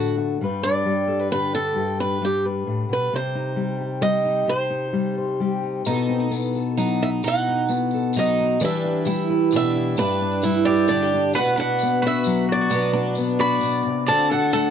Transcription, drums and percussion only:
5.85 tambourine medium
6.31 tambourine medium
6.55 tambourine soft
6.77 tambourine medium
7.23 tambourine medium
7.69 tambourine medium
7.91 tambourine soft
8.13 tambourine loud
8.60 tambourine medium
9.05 tambourine medium
9.51 tambourine medium
9.97 tambourine medium
10.31 tambourine soft
10.42 tambourine medium
10.66 tambourine soft
10.76 tambourine soft
10.88 tambourine medium
11.00 tambourine soft
11.34 tambourine medium
11.79 tambourine medium
12.24 tambourine loud
12.70 tambourine loud
13.15 tambourine medium
13.61 tambourine medium
14.06 tambourine medium
14.52 tambourine medium

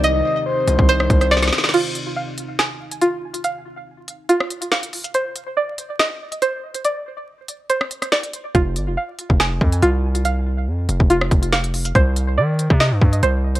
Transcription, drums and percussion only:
0.04 closed hi-hat medium
0.68 closed hi-hat medium
0.79 kick loud
0.89 closed hi-hat medium
1.00 cross-stick loud
1.10 kick loud
1.10 closed hi-hat medium
1.21 cross-stick medium
1.21 closed hi-hat medium
1.31 snare medium
1.37 snare medium
1.43 snare medium
1.43 closed hi-hat medium
1.48 snare medium
1.53 snare medium
1.53 closed hi-hat medium
1.58 snare medium
1.64 snare loud
1.69 snare loud
1.74 closed hi-hat medium
1.74 crash loud
1.95 closed hi-hat medium
2.38 closed hi-hat medium
2.59 snare loud
2.59 closed hi-hat medium
2.91 closed hi-hat medium
3.02 closed hi-hat medium
3.34 closed hi-hat medium
3.44 closed hi-hat medium
4.08 closed hi-hat medium
4.29 closed hi-hat medium
4.40 cross-stick loud
4.50 closed hi-hat medium
4.62 closed hi-hat medium
4.72 snare loud
4.83 closed hi-hat medium
4.93 closed hi-hat soft
4.93 open hi-hat medium
5.04 closed hi-hat medium
5.14 closed hi-hat medium
5.36 closed hi-hat medium
5.78 closed hi-hat medium
5.99 snare loud
5.99 closed hi-hat medium
6.32 closed hi-hat medium
6.42 closed hi-hat medium
6.75 closed hi-hat medium
6.85 closed hi-hat medium
7.48 closed hi-hat medium
7.70 closed hi-hat medium
7.81 cross-stick loud
7.91 closed hi-hat medium
8.02 cross-stick medium
8.02 closed hi-hat medium
8.12 snare loud
8.23 closed hi-hat medium
8.33 closed hi-hat medium
8.55 kick loud
8.55 closed hi-hat medium
8.76 closed hi-hat medium
9.19 closed hi-hat medium
9.30 kick medium
9.40 snare loud
9.40 closed hi-hat medium
9.61 kick medium
9.72 closed hi-hat medium
9.82 closed hi-hat medium
10.15 closed hi-hat medium
10.25 closed hi-hat medium
10.89 closed hi-hat medium
11.00 kick loud
11.10 closed hi-hat medium
11.21 cross-stick loud
11.31 kick loud
11.31 closed hi-hat medium
11.43 closed hi-hat medium
11.53 snare loud
11.64 closed hi-hat medium
11.74 closed hi-hat soft
11.74 open hi-hat medium
11.85 closed hi-hat medium
11.95 kick loud
11.95 closed hi-hat medium
12.16 closed hi-hat medium
12.59 closed hi-hat medium
12.70 kick medium
12.80 snare loud
12.80 closed hi-hat medium
13.01 kick loud
13.13 closed hi-hat medium
13.23 closed hi-hat medium
13.55 closed hi-hat medium

